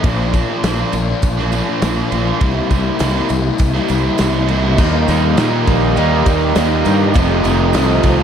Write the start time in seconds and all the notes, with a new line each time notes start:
0.03 A#1 A#2 F3 A#3 D4, kick, ride
0.33 A#2 F3 A#3 D4, kick, snare, ride, tambourine
0.47 F3 A#3 D4
0.63 A#1 A#2 F3 A#3 D4, snare, ride, tambourine
0.78 F3 A#3 D4
0.93 A#1 A#2 F3 A#3, muted overdriven electric guitar stroke, ride, tambourine
0.97 D4
1.08 F3 A#3 D4
1.22 A#1, kick, ride, tambourine
1.38 F3 A#3 D4, snare
1.52 A#2 F3 A#3 D4, ride, tambourine
1.66 F3 A#3 D4
1.81 A#1 A#2 F3 A#3 D4, snare, ride, tambourine
1.96 F3 A#3 D4
2.10 A#1 A#2 F3 A#3 D4, ride, tambourine
2.25 F3 A#3 D4
2.40 C2 C3 G3 A#3 E4, kick, ride, tambourine
2.70 C2 C3 G3 A#3 E4, kick, ride, tambourine
2.85 G3 A#3 E4
2.99 C2 C3 G3 A#3 E4, snare, ride, tambourine
3.14 G3 A#3 E4
3.29 C2 C3 G3 A#3, muted overdriven electric guitar stroke, ride, tambourine
3.33 E4
3.45 G3 A#3 E4
3.58 C2, kick, ride, tambourine
3.74 G3 A#3 E4, snare
3.88 C2 C3 G3 A#3 E4, ride, tambourine
4.04 G3 A#3 E4
4.18 C2 C3 G3 A#3 E4, snare, ride, tambourine
4.33 G3 A#3 E4
4.48 C3 G3 A#3 E4, ride, tambourine
4.63 G3 A#3 E4
4.77 D#2 D#3 G3 A#3 D#4 G4 D5 D#5 A#5, kick, crash, tambourine
5.08 D#2 D#3 G3 A#3 D#4, ride, tambourine
5.37 A#2 D#3 G3 A#3 D#4, snare, ride, tambourine
5.67 A#1 D#3 G3 A#3 D#4, kick, ride, tambourine
5.96 D#2 D#3 G3 A#3 D#4, ride, tambourine
6.26 D#2 D#3 G3 A#3 D#4, kick, ride, tambourine
6.55 D#2 D#3 G3 A#3 D#4, snare, ride, tambourine
6.85 G2 D#3 G3 A#3 D#4, ride, tambourine
7.14 F1 F2 C3 D#3 F3 A3 D#4 F4 C5 A5, kick, ride, tambourine
7.43 F1 F2 C3 D#3 F3 A3 D#4, ride, tambourine
7.73 C2 F2 C3 D#3 F3 A3 D#4, snare, ride, tambourine
8.03 C2 F2 C3 D#3 F3 A3 D#4, kick, ride, tambourine